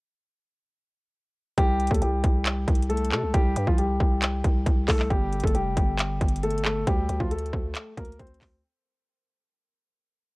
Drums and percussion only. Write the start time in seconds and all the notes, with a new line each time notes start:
1.58 kick, closed hi-hat
1.80 closed hi-hat
1.87 kick, closed hi-hat
1.94 closed hi-hat
2.02 closed hi-hat
2.24 kick, closed hi-hat
2.46 clap, closed hi-hat
2.68 kick, closed hi-hat
2.75 closed hi-hat
2.83 closed hi-hat
2.90 closed hi-hat
2.97 closed hi-hat
3.05 closed hi-hat
3.12 clap
3.34 kick, closed hi-hat
3.56 closed hi-hat
3.67 kick
3.78 closed hi-hat
4.00 kick
4.22 clap, closed hi-hat
4.44 kick, closed hi-hat
4.67 kick, closed hi-hat
4.89 kick, clap, open hi-hat
5.00 clap
5.11 kick, closed hi-hat
5.33 closed hi-hat
5.40 kick, closed hi-hat
5.47 closed hi-hat
5.55 closed hi-hat
5.77 kick, closed hi-hat
5.99 clap, closed hi-hat
6.21 kick, closed hi-hat
6.28 closed hi-hat
6.36 closed hi-hat
6.43 closed hi-hat
6.50 closed hi-hat
6.58 closed hi-hat
6.65 clap
6.87 kick, closed hi-hat
7.09 closed hi-hat
7.20 kick
7.31 closed hi-hat
7.39 closed hi-hat
7.46 closed hi-hat
7.53 kick
7.75 clap, closed hi-hat
7.97 kick, closed hi-hat
8.05 closed hi-hat
8.12 closed hi-hat
8.19 kick, closed hi-hat
8.27 closed hi-hat
8.34 closed hi-hat
8.41 kick, clap, open hi-hat